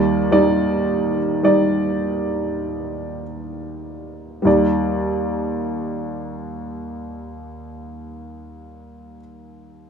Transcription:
0.00 4.42 D#2 medium
0.00 4.42 D#3 medium
0.00 0.18 G3 medium
0.00 0.18 D#4 medium
0.00 0.18 D5 medium
0.32 1.16 G3 medium
0.32 1.16 D#4 medium
0.32 1.16 D5 medium
1.43 3.21 G3 medium
1.43 3.21 D#4 medium
1.43 3.21 D5 medium
4.42 9.18 D#2 medium
4.42 9.15 G3 medium
4.42 9.18 D#4 soft
4.47 9.20 D5 medium

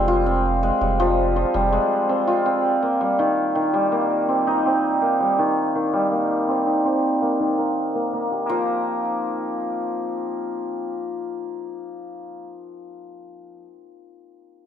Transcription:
0.00 0.71 F1 medium
0.00 0.98 F3 medium
0.00 0.80 G3 medium
0.00 0.62 G#3 medium
0.00 0.53 A#3 medium
0.00 0.26 C4 medium
0.00 0.34 D4 medium
0.08 2.27 F4 medium
0.26 2.09 C4 medium
0.63 1.71 G#3 medium
0.81 1.44 F1 loud
0.81 1.53 G3 medium
1.00 1.35 F3 loud
1.36 2.69 F3 medium
1.54 1.78 F1 medium
1.54 2.69 G3 medium
1.72 2.69 G#3 medium
2.09 2.45 C4 medium
2.27 5.64 F4 medium
2.46 4.28 C4 medium
2.82 3.92 A#3 medium
3.01 3.24 G3 medium
3.19 3.54 D#3 medium
3.55 5.37 D#3 medium
3.74 5.19 G3 medium
3.92 5.01 A#3 medium
4.29 4.65 C4 medium
4.47 6.66 D#4 loud
4.66 6.48 C4 medium
5.02 6.11 A#3 medium
5.20 5.43 G3 medium
5.39 5.74 D#3 medium
5.75 7.39 D#3 medium
5.93 7.45 G3 medium
6.12 7.21 A#3 medium
6.48 6.84 C4 medium
6.67 10.27 D#4 medium
6.85 10.85 C4 medium
7.22 7.95 A#3 medium
7.40 8.54 D#3 medium
7.58 10.41 A#4 medium
7.95 8.13 A#3 medium
8.13 12.42 A#3 medium
8.31 11.45 G4 medium
8.49 13.59 F3 medium

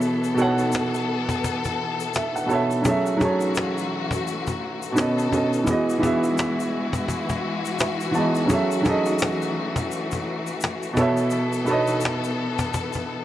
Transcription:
0.00 0.29 B2 medium
0.00 2.81 E3 medium
0.00 0.30 B3 medium
0.00 2.81 B3 medium
0.00 0.31 A4 medium
0.00 2.82 A4 medium
0.00 0.31 C#5 medium
0.00 0.33 E5 medium
0.00 shaker medium
0.24 shaker soft
0.34 1.62 B2 medium
0.34 1.63 B3 medium
0.34 1.64 A4 medium
0.34 cajon slap soft
0.34 shaker soft
0.40 1.65 C#5 medium
0.40 1.66 F#5 loud
0.59 shaker soft
0.72 cajon slap loud
0.72 shaker medium
0.94 cajon slap soft
0.94 shaker soft
1.09 cajon slap soft
1.29 cajon bass medium
1.29 shaker soft
1.44 cajon bass medium
1.44 shaker medium
1.64 cajon bass medium
1.64 shaker soft
1.99 cajon slap soft
1.99 shaker medium
2.14 2.34 E5 medium
2.14 cajon slap loud
2.14 cajon slap medium
2.14 shaker medium
2.35 2.49 F#5 medium
2.35 shaker soft
2.46 2.79 B2 medium
2.46 2.80 B3 medium
2.46 2.81 A4 medium
2.46 2.82 A5 medium
2.46 cajon slap soft
2.50 2.82 C#5 medium
2.50 2.83 E5 medium
2.50 shaker soft
2.71 shaker soft
2.82 4.94 E3 medium
2.82 3.15 F#3 medium
2.82 4.95 A3 medium
2.82 3.16 C#4 medium
2.82 4.94 F#4 medium
2.82 3.17 G#4 medium
2.82 cajon bass loud
2.82 shaker medium
2.87 3.17 A4 medium
2.87 3.19 E5 medium
3.06 shaker medium
3.16 4.44 F#3 medium
3.16 4.45 C#4 medium
3.21 4.46 G#4 medium
3.21 4.47 A4 medium
3.21 4.48 C#5 medium
3.21 cajon bass medium
3.21 shaker soft
3.41 shaker soft
3.55 cajon slap loud
3.55 cajon slap medium
3.55 shaker medium
3.78 cajon slap soft
3.78 shaker soft
3.91 cajon slap soft
4.11 cajon bass medium
4.11 shaker medium
4.25 cajon slap soft
4.25 shaker medium
4.47 cajon bass medium
4.47 shaker soft
4.61 cajon slap soft
4.81 cajon slap soft
4.81 shaker medium
4.92 5.26 B2 medium
4.92 5.27 B3 medium
4.92 5.28 C#4 medium
4.97 5.67 D#3 medium
4.97 5.67 B3 medium
4.97 5.67 A4 medium
4.97 5.29 A4 medium
4.97 5.30 D#5 medium
4.97 cajon slap loud
4.97 cajon slap medium
4.97 shaker medium
5.19 shaker soft
5.28 5.62 B2 medium
5.28 5.63 B3 medium
5.28 5.63 C#4 medium
5.32 5.64 A4 medium
5.32 5.65 D#5 medium
5.32 cajon bass medium
5.32 shaker soft
5.52 cajon slap soft
5.52 shaker soft
5.63 5.97 E3 medium
5.63 13.25 E3 medium
5.63 8.47 G#3 medium
5.63 5.98 B3 medium
5.63 8.47 E4 medium
5.63 10.92 F#4 medium
5.63 5.99 F#4 medium
5.63 cajon bass loud
5.63 shaker medium
5.69 6.00 G#4 medium
5.69 6.01 D#5 medium
5.90 shaker soft
5.98 7.26 E3 medium
5.98 7.27 B3 medium
5.98 7.28 F#4 medium
6.03 7.29 G#4 medium
6.03 7.30 E5 loud
6.03 cajon bass medium
6.03 shaker soft
6.24 shaker soft
6.38 cajon slap loud
6.38 cajon slap medium
6.38 shaker medium
6.59 cajon slap soft
6.59 shaker soft
6.73 cajon slap soft
6.93 cajon bass medium
6.93 shaker soft
7.08 cajon bass medium
7.08 shaker medium
7.29 cajon bass medium
7.29 shaker soft
7.63 cajon slap soft
7.63 shaker medium
7.79 8.12 E5 medium
7.79 cajon slap loud
7.79 shaker medium
8.01 shaker soft
8.11 8.44 E3 medium
8.11 8.45 B3 medium
8.11 8.46 F#4 medium
8.11 8.47 A5 medium
8.11 cajon slap soft
8.11 shaker soft
8.17 8.47 G#3 medium
8.17 8.48 D#5 medium
8.35 cajon slap soft
8.35 shaker soft
8.46 8.79 F#3 medium
8.46 10.94 A3 medium
8.46 8.80 C#4 medium
8.46 8.81 G#4 medium
8.46 cajon bass loud
8.46 shaker medium
8.51 8.82 A4 medium
8.51 8.83 E5 medium
8.71 shaker medium
8.82 10.09 F#3 medium
8.82 10.10 C#4 medium
8.82 10.11 G#4 medium
8.82 cajon bass medium
8.82 shaker soft
8.87 10.12 A4 medium
8.87 10.13 D#5 loud
9.06 shaker medium
9.19 cajon slap loud
9.19 shaker medium
9.23 cajon slap loud
9.42 cajon slap soft
9.42 shaker medium
9.56 cajon slap soft
9.76 cajon bass loud
9.76 shaker soft
9.91 cajon slap soft
9.91 shaker medium
10.11 cajon bass medium
10.11 shaker medium
10.27 cajon slap soft
10.47 cajon slap soft
10.47 shaker medium
10.61 cajon slap loud
10.61 cajon slap medium
10.61 shaker medium
10.83 shaker soft
10.93 11.58 B2 medium
10.93 11.59 B3 medium
10.93 13.25 B3 medium
10.93 13.25 A4 medium
10.93 11.60 A4 medium
10.93 cajon bass loud
10.93 shaker soft
10.99 11.61 C#5 medium
10.99 11.62 E5 loud
11.17 shaker soft
11.30 cajon slap soft
11.30 shaker medium
11.53 shaker medium
11.64 12.92 B2 medium
11.64 12.92 B3 medium
11.64 12.93 A4 medium
11.64 shaker soft
11.70 12.94 C#5 medium
11.70 12.95 D#5 loud
11.87 shaker medium
12.01 shaker medium
12.05 cajon slap loud
12.24 cajon slap soft
12.24 shaker medium
12.39 cajon slap soft
12.59 cajon bass loud
12.59 shaker medium
12.74 cajon bass medium
12.74 shaker medium
12.93 cajon bass medium
12.93 shaker soft
13.09 cajon slap soft

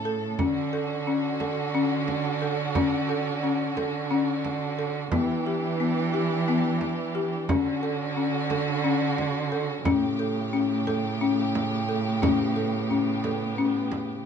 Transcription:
0.00 0.40 A2 medium
0.00 0.35 C#3 medium
0.00 0.35 A3 medium
0.00 0.36 A4 medium
0.05 0.26 A4 medium
0.39 5.14 D3 medium
0.39 5.09 D3 medium
0.39 0.60 C#4 medium
0.39 5.09 C#4 medium
0.39 5.09 F#4 medium
0.39 frame drum medium
0.73 0.94 A4 medium
1.07 1.28 C#4 medium
1.40 1.61 A4 medium
1.40 frame drum soft
1.75 2.16 C#4 medium
2.08 frame drum soft
2.42 2.62 A4 medium
2.75 2.96 C#4 medium
2.75 frame drum medium
3.09 3.30 A4 medium
3.43 3.64 C#4 medium
3.77 3.98 A4 medium
3.77 frame drum soft
4.11 4.52 C#4 medium
4.45 frame drum soft
4.79 4.99 A4 medium
5.12 7.50 E3 medium
5.12 7.47 E3 medium
5.12 5.33 B3 medium
5.12 7.47 D4 medium
5.12 7.47 G4 medium
5.12 frame drum medium
5.47 5.67 G4 medium
5.80 6.01 B3 medium
6.14 6.34 G4 medium
6.48 6.89 B3 medium
6.81 frame drum soft
7.15 7.36 G4 medium
7.48 9.83 D3 medium
7.48 9.87 D3 medium
7.48 9.83 C#4 medium
7.48 7.70 C#4 medium
7.48 9.83 F#4 medium
7.48 frame drum medium
7.83 8.04 A4 medium
8.17 8.37 C#4 medium
8.50 8.71 A4 medium
8.50 frame drum soft
8.84 9.25 C#4 medium
9.18 frame drum soft
9.52 9.73 A4 medium
9.85 14.26 A2 medium
9.85 14.26 C#3 medium
9.85 12.20 A3 medium
9.85 10.06 C#4 medium
9.85 14.26 G4 medium
9.85 frame drum medium
10.19 10.40 A4 medium
10.53 10.74 C#4 medium
10.87 11.08 A4 medium
10.87 frame drum soft
11.21 11.62 C#4 medium
11.55 frame drum soft
11.89 12.09 A4 medium
12.22 14.26 B3 medium
12.22 12.43 C#4 medium
12.22 frame drum medium
12.56 12.77 A4 medium
12.90 13.11 C#4 medium
12.90 frame drum soft
13.24 13.45 A4 medium
13.24 frame drum soft
13.58 14.00 C#4 medium
13.92 frame drum soft

